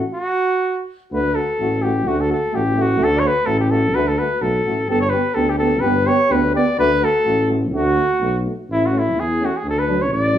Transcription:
0.15 F#4
1.11 D2 A3 F#4 B4
1.35 A3 F#4 A4
1.59 A1 A3 F#4
1.82 A3 F#4 G4
2.05 D2 A3 F#4
2.21 A4
2.29 A3 F#4 A4
2.52 A1 A3 F#4 G4
2.75 A3 F#4
2.81 F#4
2.97 A3 F#4
3.01 D2 A4
3.16 C#5 D5
3.22 A3 F#4
3.27 B4
3.44 A1 A3 F#4 A4
3.60 G4
3.70 A3 F#4 A4
3.94 D2 A3 F#4 B4
4.08 A4
4.16 A3 F#4 B4
4.40 B1 A3 F#4 A4
4.64 A1 A3 F#4
4.88 G1 B3 G4 A4
5.01 C#5
5.10 B3 G4 B4
5.34 D2 B3 G4 A4
5.50 G4
5.58 B3 G4 A4
5.80 G1 B3 G4 B4
6.05 B3 G4 C#5
6.28 D2 B3 G4 B4
6.54 B3 G4 D5
6.77 D2 A3 F#4 B4
7.01 A3 F#4 A4
7.25 A1 A3 F#4
7.47 A3 F#4
7.73 D2 A3 F#4
7.97 A3 F#4
8.20 B1 A3 F#4
8.44 A3 F#4
8.69 A1 E4
8.86 F#4
8.92 A3 C#4
8.99 E4
9.16 E2 G#4
9.39 A3 C#4
9.45 F#4
9.57 G#4
9.64 D2
9.70 A4
9.79 B4
9.87 F#3 D4
10.02 C#5
10.11 A1 D5
10.33 F#3

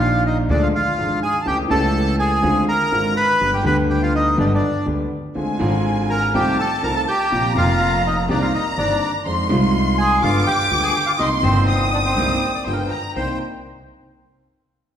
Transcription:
Already playing: A#1 A#2 D#3 A#3 D4 F4 G4 F5
0.26 D#4 D#5
0.49 D2 D3 F3 G#3 D4 G#4 D5
0.63 F4 F5
0.75 F4 F5
0.98 G#1 G#2 F3 G#3 D4 G#4
1.23 G#4 G#5
1.41 A5
1.45 C#2 C#3 E3 A3 C#4 G4 G5
1.68 C#2 C#3 E3 A3 C#4 A4 A5
1.72 G4
2.19 G#4 G#5
2.42 D2 D3 G#3 C4 F4
2.69 A#4 A#5
2.91 G#1 G#2 D3 G#3 C4 F4
3.17 B4 B5
3.41 G1 G2 D3 G3 B3 G4
3.54 G4 G5
3.63 D2 D3 G3 B3 G4 B4 B5
3.90 G4 G5
4.02 F4 F5
4.15 D#4 D#5
4.37 G1 G2 D3 G3 B3 D4 G4 D5
4.46 D#5
4.54 D4 D5
4.86 D2 D3 G3 B3 G4
5.35 D2 D3 G#3 C4 F4 G#5
5.57 G#1 G#2 D3 G#3 C4 F4
6.10 A#4 A#5
6.34 C2 C3 D#3 A3 C4 F4 G4 G5 A5
6.59 A4 A5
6.82 C2 C3 D#3 A3 C4 F4 A#4 A#5
6.96 A4 A5
7.08 G4 G5
7.31 A#1 A#2 C3 F3 A#3 F4 A#5
7.55 F1 F2 C3 F3 A#3 F4 F5
8.07 D#4 D#5
8.29 C2 C3 D#3 A#3 C4 D4 G4 D5 A#5
8.42 F4 F5
8.54 D#4 D#5
8.77 G1 G2 D#3 A#3 C4 D4 G4 D5
9.25 F2 D#3 F3 G#3 C4 F4 C6
9.47 C2 C3 D#3 G#3 C4
9.52 F4
9.98 G#4 G#5
10.22 G1 G2 D3 G3 B3 F4 F5 D6
10.46 G4 G5
10.71 D2 D3 G3 B3 F4
10.83 G#4 G#5
10.94 G4 G5
11.06 F4 F5
11.18 C2 C3 G3 A#3 D#4 D#5 C6
11.41 G1 G2 C3 G3 A#3 C4 C5
11.46 D#4
11.68 D#6
11.93 D4 D5
12.05 C4 C5
12.17 C2 C3 G3 A#3 D#4
12.55 D5
12.63 G1 G2 D3 G3 B3 C5 G5
12.68 F4
12.73 A#4
12.82 C5
12.91 A#5
13.16 C2 A#3 C4 D#4 C5 G5

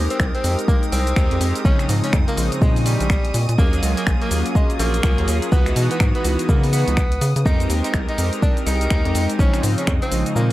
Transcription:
Already playing: G#3 C4 D#4 G4 A#4 G5 D#6
0.10 C4, closed hi-hat, cabasa
0.20 C2, finger snap, kick, cabasa
0.34 C4, closed hi-hat
0.44 F2, open hi-hat, cabasa
0.59 closed hi-hat, cabasa
0.68 A#3, kick, cabasa
0.83 closed hi-hat, cabasa
0.92 C2 C4, open hi-hat, cabasa
1.07 closed hi-hat, cabasa
1.16 D#2 G#3 C4 D#4 G4 A#4, finger snap, kick, cabasa
1.31 F2, closed hi-hat
1.41 F2, open hi-hat, cabasa
1.55 closed hi-hat, cabasa
1.64 A#1 C#3 F3 G#3 C4 C#4 D#4 D#5 G#5 C#6, kick, cabasa
1.79 finger snap, closed hi-hat, cabasa
1.89 G#2, open hi-hat, cabasa
2.04 C#4, closed hi-hat, cabasa
2.13 F2, finger snap, kick, cabasa
2.28 A#3, closed hi-hat, cabasa
2.37 A#1, open hi-hat, cabasa
2.52 closed hi-hat, cabasa
2.62 A#2 G#3, kick, cabasa
2.76 open hi-hat, cabasa
2.86 G3, open hi-hat, cabasa
3.00 A#1, closed hi-hat, cabasa
3.10 finger snap, kick, cabasa
3.25 closed hi-hat
3.34 A#2, open hi-hat, cabasa
3.49 A#2, closed hi-hat, cabasa
3.57 D#2 F#3 A#3 C#4 F4 G#4 F5 C#6, kick, cabasa
3.73 closed hi-hat, cabasa
3.83 C#2, open hi-hat, cabasa
3.97 A#3, closed hi-hat, cabasa
4.07 A#1, finger snap, kick, cabasa
4.22 A#3, closed hi-hat
4.31 D#2, open hi-hat, cabasa
4.46 closed hi-hat, cabasa
4.55 G#3, kick, cabasa
4.70 closed hi-hat, cabasa
4.79 A#1 A#3, open hi-hat, cabasa
4.94 closed hi-hat, cabasa
5.03 C#2 F#3 A#3 C#4 F4 G#4, finger snap, kick, cabasa
5.18 D#2, closed hi-hat
5.28 D#2, open hi-hat, cabasa
5.42 closed hi-hat, cabasa
5.51 C#2 E3 B3 D#4 F#4 B4 D#6, kick, cabasa
5.66 finger snap, closed hi-hat, cabasa
5.76 B2, open hi-hat, cabasa
5.91 B3, closed hi-hat, cabasa
6.00 G#2, finger snap, kick, cabasa
6.15 B3, closed hi-hat
6.25 C#2, open hi-hat, cabasa
6.39 closed hi-hat, cabasa
6.49 C#3 A#3, kick, cabasa
6.63 open hi-hat, cabasa
6.73 B3, open hi-hat, cabasa
6.88 C#2, closed hi-hat, cabasa
6.97 finger snap, kick, cabasa
7.12 closed hi-hat
7.21 C#3, open hi-hat, cabasa
7.36 C#3, closed hi-hat, cabasa
7.45 F2 G#3 C4 D#4 G4 A#4 G5, kick, cabasa
7.60 closed hi-hat, cabasa
7.70 D#2, open hi-hat, cabasa
7.84 D#4, closed hi-hat, cabasa
7.94 C2, finger snap, kick, cabasa
8.09 D#4, closed hi-hat
8.18 F2, open hi-hat, cabasa
8.33 closed hi-hat, cabasa
8.42 D4, kick, cabasa
8.57 closed hi-hat, cabasa
8.67 C2 D#4, open hi-hat, cabasa
8.81 closed hi-hat, cabasa
8.90 D#2 G#3 G4 A#4, finger snap, kick, cabasa
9.05 F2, closed hi-hat
9.15 F2, open hi-hat, cabasa
9.30 closed hi-hat, cabasa
9.38 A#1 C#3 F3 G#3 C4 C#4 D#4 D#5 G#5 C#6, kick, cabasa
9.54 finger snap, closed hi-hat, cabasa
9.63 G#2, open hi-hat, cabasa
9.78 C#4, closed hi-hat, cabasa
9.87 F2, finger snap, kick, cabasa
10.02 C4, closed hi-hat, cabasa
10.12 A#1, open hi-hat, cabasa
10.26 closed hi-hat, cabasa
10.36 A#2 A#3, cabasa

